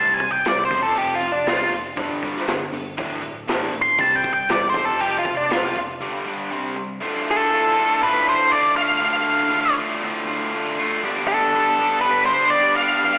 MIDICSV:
0, 0, Header, 1, 5, 480
1, 0, Start_track
1, 0, Tempo, 503356
1, 920, Time_signature, 4, 2, 24, 8
1, 12570, End_track
2, 0, Start_track
2, 0, Title_t, "Lead electric guitar"
2, 0, Program_c, 0, 29
2, 0, Note_on_c, 0, 81, 95
2, 133, Note_off_c, 0, 81, 0
2, 133, Note_on_c, 0, 80, 80
2, 281, Note_off_c, 0, 80, 0
2, 305, Note_on_c, 0, 79, 82
2, 448, Note_off_c, 0, 79, 0
2, 456, Note_on_c, 0, 74, 89
2, 604, Note_off_c, 0, 74, 0
2, 620, Note_on_c, 0, 72, 82
2, 766, Note_off_c, 0, 72, 0
2, 787, Note_on_c, 0, 69, 92
2, 933, Note_off_c, 0, 69, 0
2, 933, Note_on_c, 0, 67, 94
2, 1082, Note_off_c, 0, 67, 0
2, 1100, Note_on_c, 0, 65, 90
2, 1258, Note_off_c, 0, 65, 0
2, 1258, Note_on_c, 0, 62, 89
2, 1418, Note_off_c, 0, 62, 0
2, 1418, Note_on_c, 0, 65, 94
2, 1643, Note_off_c, 0, 65, 0
2, 3642, Note_on_c, 0, 84, 98
2, 3819, Note_off_c, 0, 84, 0
2, 3819, Note_on_c, 0, 81, 90
2, 3963, Note_on_c, 0, 79, 91
2, 3968, Note_off_c, 0, 81, 0
2, 4120, Note_off_c, 0, 79, 0
2, 4135, Note_on_c, 0, 79, 93
2, 4286, Note_off_c, 0, 79, 0
2, 4303, Note_on_c, 0, 74, 99
2, 4451, Note_off_c, 0, 74, 0
2, 4477, Note_on_c, 0, 72, 95
2, 4627, Note_off_c, 0, 72, 0
2, 4627, Note_on_c, 0, 69, 97
2, 4773, Note_off_c, 0, 69, 0
2, 4775, Note_on_c, 0, 67, 96
2, 4927, Note_off_c, 0, 67, 0
2, 4945, Note_on_c, 0, 65, 93
2, 5093, Note_off_c, 0, 65, 0
2, 5120, Note_on_c, 0, 62, 96
2, 5260, Note_off_c, 0, 62, 0
2, 5263, Note_on_c, 0, 65, 102
2, 5489, Note_off_c, 0, 65, 0
2, 6970, Note_on_c, 0, 69, 93
2, 7655, Note_off_c, 0, 69, 0
2, 7659, Note_on_c, 0, 71, 94
2, 7876, Note_off_c, 0, 71, 0
2, 7905, Note_on_c, 0, 72, 95
2, 8123, Note_on_c, 0, 74, 105
2, 8142, Note_off_c, 0, 72, 0
2, 8355, Note_off_c, 0, 74, 0
2, 8358, Note_on_c, 0, 77, 105
2, 9281, Note_off_c, 0, 77, 0
2, 10753, Note_on_c, 0, 69, 90
2, 11449, Note_off_c, 0, 69, 0
2, 11453, Note_on_c, 0, 71, 93
2, 11684, Note_off_c, 0, 71, 0
2, 11688, Note_on_c, 0, 72, 98
2, 11920, Note_on_c, 0, 74, 108
2, 11924, Note_off_c, 0, 72, 0
2, 12160, Note_off_c, 0, 74, 0
2, 12173, Note_on_c, 0, 77, 101
2, 12570, Note_off_c, 0, 77, 0
2, 12570, End_track
3, 0, Start_track
3, 0, Title_t, "Overdriven electric guitar"
3, 0, Program_c, 1, 29
3, 0, Note_on_c, 1, 48, 96
3, 0, Note_on_c, 1, 55, 92
3, 0, Note_on_c, 1, 60, 106
3, 178, Note_off_c, 1, 48, 0
3, 180, Note_off_c, 1, 55, 0
3, 181, Note_off_c, 1, 60, 0
3, 202, Note_on_c, 1, 55, 80
3, 207, Note_on_c, 1, 48, 80
3, 417, Note_off_c, 1, 55, 0
3, 419, Note_off_c, 1, 48, 0
3, 440, Note_on_c, 1, 48, 73
3, 446, Note_on_c, 1, 55, 81
3, 656, Note_off_c, 1, 48, 0
3, 659, Note_off_c, 1, 55, 0
3, 681, Note_on_c, 1, 41, 84
3, 682, Note_on_c, 1, 48, 91
3, 687, Note_on_c, 1, 53, 93
3, 902, Note_off_c, 1, 41, 0
3, 905, Note_off_c, 1, 48, 0
3, 909, Note_off_c, 1, 53, 0
3, 914, Note_on_c, 1, 41, 87
3, 916, Note_on_c, 1, 48, 100
3, 920, Note_on_c, 1, 53, 98
3, 1140, Note_off_c, 1, 41, 0
3, 1144, Note_off_c, 1, 48, 0
3, 1146, Note_off_c, 1, 53, 0
3, 1152, Note_on_c, 1, 41, 73
3, 1163, Note_on_c, 1, 48, 82
3, 1373, Note_off_c, 1, 41, 0
3, 1378, Note_off_c, 1, 48, 0
3, 1399, Note_on_c, 1, 41, 91
3, 1401, Note_on_c, 1, 48, 91
3, 1408, Note_on_c, 1, 53, 107
3, 1626, Note_off_c, 1, 41, 0
3, 1627, Note_off_c, 1, 48, 0
3, 1630, Note_off_c, 1, 53, 0
3, 1639, Note_on_c, 1, 41, 70
3, 1642, Note_on_c, 1, 48, 77
3, 1857, Note_off_c, 1, 41, 0
3, 1858, Note_off_c, 1, 48, 0
3, 1870, Note_on_c, 1, 43, 86
3, 1877, Note_on_c, 1, 50, 104
3, 1880, Note_on_c, 1, 55, 98
3, 2102, Note_off_c, 1, 43, 0
3, 2106, Note_off_c, 1, 50, 0
3, 2107, Note_off_c, 1, 55, 0
3, 2126, Note_on_c, 1, 43, 99
3, 2129, Note_on_c, 1, 50, 106
3, 2135, Note_on_c, 1, 55, 101
3, 2351, Note_off_c, 1, 43, 0
3, 2352, Note_off_c, 1, 50, 0
3, 2355, Note_off_c, 1, 55, 0
3, 2364, Note_on_c, 1, 43, 80
3, 2365, Note_on_c, 1, 50, 88
3, 2580, Note_off_c, 1, 43, 0
3, 2581, Note_off_c, 1, 50, 0
3, 2602, Note_on_c, 1, 50, 83
3, 2606, Note_on_c, 1, 43, 68
3, 2820, Note_off_c, 1, 50, 0
3, 2821, Note_off_c, 1, 43, 0
3, 2835, Note_on_c, 1, 38, 87
3, 2842, Note_on_c, 1, 50, 95
3, 2843, Note_on_c, 1, 45, 97
3, 3058, Note_off_c, 1, 38, 0
3, 3063, Note_off_c, 1, 45, 0
3, 3069, Note_off_c, 1, 50, 0
3, 3069, Note_on_c, 1, 38, 77
3, 3075, Note_on_c, 1, 45, 84
3, 3294, Note_off_c, 1, 38, 0
3, 3296, Note_off_c, 1, 45, 0
3, 3315, Note_on_c, 1, 38, 94
3, 3320, Note_on_c, 1, 45, 95
3, 3325, Note_on_c, 1, 50, 112
3, 3545, Note_off_c, 1, 45, 0
3, 3547, Note_off_c, 1, 38, 0
3, 3552, Note_off_c, 1, 50, 0
3, 3556, Note_on_c, 1, 45, 78
3, 3558, Note_on_c, 1, 38, 77
3, 3778, Note_off_c, 1, 38, 0
3, 3778, Note_off_c, 1, 45, 0
3, 3794, Note_on_c, 1, 48, 97
3, 3803, Note_on_c, 1, 55, 104
3, 3805, Note_on_c, 1, 60, 96
3, 4020, Note_off_c, 1, 48, 0
3, 4024, Note_off_c, 1, 55, 0
3, 4031, Note_on_c, 1, 48, 75
3, 4032, Note_off_c, 1, 60, 0
3, 4036, Note_on_c, 1, 55, 92
3, 4256, Note_off_c, 1, 48, 0
3, 4258, Note_off_c, 1, 55, 0
3, 4284, Note_on_c, 1, 48, 85
3, 4290, Note_on_c, 1, 55, 91
3, 4502, Note_off_c, 1, 48, 0
3, 4505, Note_off_c, 1, 55, 0
3, 4521, Note_on_c, 1, 41, 89
3, 4527, Note_on_c, 1, 48, 94
3, 4532, Note_on_c, 1, 53, 98
3, 4751, Note_off_c, 1, 41, 0
3, 4754, Note_off_c, 1, 48, 0
3, 4756, Note_off_c, 1, 53, 0
3, 4762, Note_on_c, 1, 41, 96
3, 4767, Note_on_c, 1, 48, 100
3, 4774, Note_on_c, 1, 53, 97
3, 4991, Note_off_c, 1, 41, 0
3, 4994, Note_off_c, 1, 48, 0
3, 4997, Note_off_c, 1, 53, 0
3, 5010, Note_on_c, 1, 41, 69
3, 5012, Note_on_c, 1, 48, 86
3, 5224, Note_off_c, 1, 41, 0
3, 5227, Note_off_c, 1, 48, 0
3, 5235, Note_on_c, 1, 41, 100
3, 5243, Note_on_c, 1, 48, 106
3, 5248, Note_on_c, 1, 53, 102
3, 5468, Note_off_c, 1, 41, 0
3, 5472, Note_off_c, 1, 48, 0
3, 5474, Note_off_c, 1, 53, 0
3, 5489, Note_on_c, 1, 41, 69
3, 5491, Note_on_c, 1, 48, 82
3, 5705, Note_off_c, 1, 41, 0
3, 5706, Note_off_c, 1, 48, 0
3, 5727, Note_on_c, 1, 43, 91
3, 5735, Note_on_c, 1, 50, 97
3, 5740, Note_on_c, 1, 55, 102
3, 5954, Note_off_c, 1, 43, 0
3, 5958, Note_off_c, 1, 50, 0
3, 5960, Note_off_c, 1, 55, 0
3, 5972, Note_on_c, 1, 43, 88
3, 5976, Note_on_c, 1, 50, 98
3, 5981, Note_on_c, 1, 55, 104
3, 6196, Note_off_c, 1, 43, 0
3, 6198, Note_off_c, 1, 50, 0
3, 6198, Note_off_c, 1, 55, 0
3, 6209, Note_on_c, 1, 48, 89
3, 6209, Note_on_c, 1, 55, 97
3, 6219, Note_on_c, 1, 60, 103
3, 6435, Note_off_c, 1, 48, 0
3, 6435, Note_off_c, 1, 55, 0
3, 6440, Note_off_c, 1, 60, 0
3, 6447, Note_on_c, 1, 48, 67
3, 6451, Note_on_c, 1, 55, 82
3, 6664, Note_off_c, 1, 48, 0
3, 6666, Note_off_c, 1, 55, 0
3, 6680, Note_on_c, 1, 38, 101
3, 6681, Note_on_c, 1, 45, 96
3, 6690, Note_on_c, 1, 50, 104
3, 6692, Note_on_c, 1, 57, 98
3, 6699, Note_on_c, 1, 65, 102
3, 7155, Note_off_c, 1, 45, 0
3, 7166, Note_on_c, 1, 45, 82
3, 7170, Note_off_c, 1, 50, 0
3, 7174, Note_on_c, 1, 50, 85
3, 7183, Note_off_c, 1, 57, 0
3, 7187, Note_off_c, 1, 65, 0
3, 7187, Note_on_c, 1, 57, 85
3, 7191, Note_on_c, 1, 65, 90
3, 7394, Note_off_c, 1, 65, 0
3, 7397, Note_on_c, 1, 65, 82
3, 7409, Note_off_c, 1, 57, 0
3, 7413, Note_on_c, 1, 57, 71
3, 7419, Note_off_c, 1, 50, 0
3, 7423, Note_on_c, 1, 50, 69
3, 7646, Note_off_c, 1, 45, 0
3, 7650, Note_off_c, 1, 38, 0
3, 7650, Note_off_c, 1, 50, 0
3, 7653, Note_on_c, 1, 38, 104
3, 7660, Note_off_c, 1, 65, 0
3, 7661, Note_off_c, 1, 57, 0
3, 7662, Note_on_c, 1, 50, 108
3, 7664, Note_on_c, 1, 45, 115
3, 7664, Note_on_c, 1, 57, 104
3, 7672, Note_on_c, 1, 65, 108
3, 7873, Note_off_c, 1, 65, 0
3, 7884, Note_on_c, 1, 65, 77
3, 7897, Note_off_c, 1, 57, 0
3, 7898, Note_off_c, 1, 50, 0
3, 7901, Note_on_c, 1, 57, 74
3, 7909, Note_on_c, 1, 50, 70
3, 8129, Note_off_c, 1, 38, 0
3, 8134, Note_off_c, 1, 45, 0
3, 8353, Note_off_c, 1, 65, 0
3, 8364, Note_on_c, 1, 65, 75
3, 8372, Note_off_c, 1, 50, 0
3, 8379, Note_off_c, 1, 57, 0
3, 8382, Note_on_c, 1, 57, 69
3, 8384, Note_on_c, 1, 50, 58
3, 8582, Note_off_c, 1, 50, 0
3, 8584, Note_on_c, 1, 38, 101
3, 8590, Note_on_c, 1, 45, 106
3, 8593, Note_on_c, 1, 50, 101
3, 8594, Note_off_c, 1, 65, 0
3, 8598, Note_off_c, 1, 57, 0
3, 8602, Note_on_c, 1, 57, 95
3, 8605, Note_on_c, 1, 65, 109
3, 9047, Note_off_c, 1, 45, 0
3, 9054, Note_off_c, 1, 50, 0
3, 9058, Note_on_c, 1, 45, 83
3, 9066, Note_on_c, 1, 50, 79
3, 9071, Note_off_c, 1, 57, 0
3, 9073, Note_off_c, 1, 65, 0
3, 9075, Note_on_c, 1, 57, 85
3, 9085, Note_on_c, 1, 65, 84
3, 9296, Note_off_c, 1, 65, 0
3, 9308, Note_on_c, 1, 65, 81
3, 9313, Note_off_c, 1, 38, 0
3, 9322, Note_off_c, 1, 57, 0
3, 9326, Note_on_c, 1, 57, 63
3, 9327, Note_off_c, 1, 50, 0
3, 9338, Note_on_c, 1, 50, 57
3, 9550, Note_off_c, 1, 45, 0
3, 9558, Note_on_c, 1, 38, 101
3, 9560, Note_off_c, 1, 50, 0
3, 9565, Note_on_c, 1, 45, 116
3, 9571, Note_on_c, 1, 50, 104
3, 9572, Note_off_c, 1, 65, 0
3, 9574, Note_off_c, 1, 57, 0
3, 9578, Note_on_c, 1, 57, 101
3, 9583, Note_on_c, 1, 65, 108
3, 9783, Note_off_c, 1, 65, 0
3, 9794, Note_on_c, 1, 65, 87
3, 9804, Note_off_c, 1, 50, 0
3, 9804, Note_off_c, 1, 57, 0
3, 9808, Note_on_c, 1, 57, 70
3, 9816, Note_on_c, 1, 50, 72
3, 10039, Note_off_c, 1, 38, 0
3, 10042, Note_off_c, 1, 45, 0
3, 10269, Note_off_c, 1, 65, 0
3, 10281, Note_on_c, 1, 65, 82
3, 10288, Note_off_c, 1, 57, 0
3, 10289, Note_off_c, 1, 50, 0
3, 10291, Note_on_c, 1, 57, 68
3, 10300, Note_on_c, 1, 50, 64
3, 10505, Note_off_c, 1, 50, 0
3, 10506, Note_off_c, 1, 65, 0
3, 10512, Note_on_c, 1, 43, 98
3, 10516, Note_on_c, 1, 50, 101
3, 10522, Note_on_c, 1, 55, 108
3, 10525, Note_off_c, 1, 57, 0
3, 10529, Note_on_c, 1, 59, 107
3, 10529, Note_on_c, 1, 62, 97
3, 10537, Note_on_c, 1, 67, 117
3, 10998, Note_off_c, 1, 55, 0
3, 11002, Note_on_c, 1, 55, 85
3, 11010, Note_off_c, 1, 59, 0
3, 11013, Note_off_c, 1, 62, 0
3, 11013, Note_on_c, 1, 59, 88
3, 11017, Note_on_c, 1, 62, 99
3, 11021, Note_off_c, 1, 67, 0
3, 11025, Note_on_c, 1, 67, 95
3, 11232, Note_off_c, 1, 67, 0
3, 11235, Note_on_c, 1, 67, 81
3, 11236, Note_off_c, 1, 50, 0
3, 11237, Note_off_c, 1, 62, 0
3, 11241, Note_on_c, 1, 62, 75
3, 11248, Note_off_c, 1, 59, 0
3, 11252, Note_on_c, 1, 59, 74
3, 11254, Note_off_c, 1, 55, 0
3, 11258, Note_on_c, 1, 55, 63
3, 11471, Note_off_c, 1, 55, 0
3, 11475, Note_off_c, 1, 43, 0
3, 11477, Note_on_c, 1, 50, 106
3, 11478, Note_on_c, 1, 43, 112
3, 11479, Note_off_c, 1, 59, 0
3, 11483, Note_on_c, 1, 55, 97
3, 11487, Note_off_c, 1, 62, 0
3, 11489, Note_off_c, 1, 67, 0
3, 11490, Note_on_c, 1, 59, 107
3, 11491, Note_on_c, 1, 62, 107
3, 11500, Note_on_c, 1, 67, 116
3, 11704, Note_off_c, 1, 67, 0
3, 11715, Note_off_c, 1, 59, 0
3, 11715, Note_on_c, 1, 67, 81
3, 11717, Note_off_c, 1, 62, 0
3, 11721, Note_on_c, 1, 62, 75
3, 11727, Note_off_c, 1, 55, 0
3, 11727, Note_on_c, 1, 59, 70
3, 11739, Note_on_c, 1, 55, 67
3, 11956, Note_off_c, 1, 50, 0
3, 11957, Note_off_c, 1, 43, 0
3, 12180, Note_off_c, 1, 67, 0
3, 12192, Note_on_c, 1, 67, 79
3, 12193, Note_off_c, 1, 59, 0
3, 12200, Note_off_c, 1, 62, 0
3, 12204, Note_on_c, 1, 59, 74
3, 12204, Note_on_c, 1, 62, 72
3, 12205, Note_off_c, 1, 55, 0
3, 12216, Note_on_c, 1, 55, 69
3, 12431, Note_off_c, 1, 55, 0
3, 12432, Note_on_c, 1, 43, 101
3, 12439, Note_off_c, 1, 59, 0
3, 12439, Note_on_c, 1, 50, 94
3, 12440, Note_off_c, 1, 67, 0
3, 12442, Note_on_c, 1, 55, 98
3, 12448, Note_off_c, 1, 62, 0
3, 12451, Note_on_c, 1, 59, 113
3, 12451, Note_on_c, 1, 67, 110
3, 12452, Note_on_c, 1, 62, 109
3, 12570, Note_off_c, 1, 43, 0
3, 12570, Note_off_c, 1, 50, 0
3, 12570, Note_off_c, 1, 55, 0
3, 12570, Note_off_c, 1, 59, 0
3, 12570, Note_off_c, 1, 62, 0
3, 12570, Note_off_c, 1, 67, 0
3, 12570, End_track
4, 0, Start_track
4, 0, Title_t, "Picked electric bass"
4, 0, Program_c, 2, 34
4, 0, Note_on_c, 2, 36, 88
4, 333, Note_off_c, 2, 36, 0
4, 441, Note_on_c, 2, 36, 90
4, 628, Note_off_c, 2, 36, 0
4, 680, Note_on_c, 2, 29, 86
4, 868, Note_off_c, 2, 29, 0
4, 907, Note_on_c, 2, 29, 92
4, 1100, Note_off_c, 2, 29, 0
4, 1146, Note_on_c, 2, 29, 83
4, 1339, Note_off_c, 2, 29, 0
4, 1391, Note_on_c, 2, 36, 95
4, 1583, Note_off_c, 2, 36, 0
4, 1636, Note_on_c, 2, 29, 83
4, 1825, Note_off_c, 2, 29, 0
4, 1883, Note_on_c, 2, 31, 88
4, 2258, Note_off_c, 2, 31, 0
4, 2361, Note_on_c, 2, 31, 93
4, 2549, Note_off_c, 2, 31, 0
4, 2595, Note_on_c, 2, 31, 85
4, 2786, Note_off_c, 2, 31, 0
4, 2847, Note_on_c, 2, 26, 97
4, 3034, Note_off_c, 2, 26, 0
4, 3073, Note_on_c, 2, 26, 82
4, 3265, Note_off_c, 2, 26, 0
4, 3319, Note_on_c, 2, 33, 86
4, 3509, Note_off_c, 2, 33, 0
4, 3569, Note_on_c, 2, 26, 92
4, 3755, Note_off_c, 2, 26, 0
4, 3808, Note_on_c, 2, 36, 89
4, 4182, Note_off_c, 2, 36, 0
4, 4302, Note_on_c, 2, 28, 100
4, 4484, Note_off_c, 2, 28, 0
4, 4526, Note_on_c, 2, 29, 94
4, 4714, Note_off_c, 2, 29, 0
4, 4780, Note_on_c, 2, 29, 97
4, 4963, Note_off_c, 2, 29, 0
4, 5009, Note_on_c, 2, 29, 86
4, 5196, Note_off_c, 2, 29, 0
4, 5260, Note_on_c, 2, 36, 93
4, 5443, Note_off_c, 2, 36, 0
4, 5493, Note_on_c, 2, 29, 95
4, 5679, Note_off_c, 2, 29, 0
4, 12570, End_track
5, 0, Start_track
5, 0, Title_t, "Drums"
5, 187, Note_on_c, 9, 46, 59
5, 193, Note_on_c, 9, 36, 84
5, 282, Note_off_c, 9, 46, 0
5, 288, Note_off_c, 9, 36, 0
5, 428, Note_on_c, 9, 46, 85
5, 438, Note_on_c, 9, 38, 119
5, 523, Note_off_c, 9, 46, 0
5, 534, Note_off_c, 9, 38, 0
5, 675, Note_on_c, 9, 36, 110
5, 675, Note_on_c, 9, 46, 58
5, 771, Note_off_c, 9, 36, 0
5, 771, Note_off_c, 9, 46, 0
5, 910, Note_on_c, 9, 46, 83
5, 1005, Note_off_c, 9, 46, 0
5, 1161, Note_on_c, 9, 46, 56
5, 1257, Note_off_c, 9, 46, 0
5, 1394, Note_on_c, 9, 46, 72
5, 1404, Note_on_c, 9, 38, 103
5, 1489, Note_off_c, 9, 46, 0
5, 1499, Note_off_c, 9, 38, 0
5, 1646, Note_on_c, 9, 46, 58
5, 1741, Note_off_c, 9, 46, 0
5, 1872, Note_on_c, 9, 46, 77
5, 1880, Note_on_c, 9, 36, 111
5, 1967, Note_off_c, 9, 46, 0
5, 1976, Note_off_c, 9, 36, 0
5, 2123, Note_on_c, 9, 36, 83
5, 2127, Note_on_c, 9, 46, 56
5, 2219, Note_off_c, 9, 36, 0
5, 2222, Note_off_c, 9, 46, 0
5, 2255, Note_on_c, 9, 38, 35
5, 2351, Note_off_c, 9, 38, 0
5, 2357, Note_on_c, 9, 46, 76
5, 2368, Note_on_c, 9, 38, 116
5, 2452, Note_off_c, 9, 46, 0
5, 2463, Note_off_c, 9, 38, 0
5, 2607, Note_on_c, 9, 46, 57
5, 2703, Note_off_c, 9, 46, 0
5, 2843, Note_on_c, 9, 36, 120
5, 2843, Note_on_c, 9, 46, 80
5, 2939, Note_off_c, 9, 36, 0
5, 2939, Note_off_c, 9, 46, 0
5, 3078, Note_on_c, 9, 46, 53
5, 3173, Note_off_c, 9, 46, 0
5, 3319, Note_on_c, 9, 46, 74
5, 3329, Note_on_c, 9, 38, 108
5, 3414, Note_off_c, 9, 46, 0
5, 3425, Note_off_c, 9, 38, 0
5, 3561, Note_on_c, 9, 46, 59
5, 3657, Note_off_c, 9, 46, 0
5, 3796, Note_on_c, 9, 46, 80
5, 3802, Note_on_c, 9, 36, 113
5, 3891, Note_off_c, 9, 46, 0
5, 3898, Note_off_c, 9, 36, 0
5, 4045, Note_on_c, 9, 46, 62
5, 4046, Note_on_c, 9, 36, 86
5, 4140, Note_off_c, 9, 46, 0
5, 4141, Note_off_c, 9, 36, 0
5, 4279, Note_on_c, 9, 46, 87
5, 4290, Note_on_c, 9, 38, 113
5, 4375, Note_off_c, 9, 46, 0
5, 4385, Note_off_c, 9, 38, 0
5, 4519, Note_on_c, 9, 46, 59
5, 4523, Note_on_c, 9, 36, 105
5, 4615, Note_off_c, 9, 46, 0
5, 4618, Note_off_c, 9, 36, 0
5, 4764, Note_on_c, 9, 46, 84
5, 4860, Note_off_c, 9, 46, 0
5, 5008, Note_on_c, 9, 36, 78
5, 5011, Note_on_c, 9, 46, 59
5, 5103, Note_off_c, 9, 36, 0
5, 5107, Note_off_c, 9, 46, 0
5, 5246, Note_on_c, 9, 46, 81
5, 5256, Note_on_c, 9, 38, 107
5, 5341, Note_off_c, 9, 46, 0
5, 5352, Note_off_c, 9, 38, 0
5, 5477, Note_on_c, 9, 46, 62
5, 5572, Note_off_c, 9, 46, 0
5, 12570, End_track
0, 0, End_of_file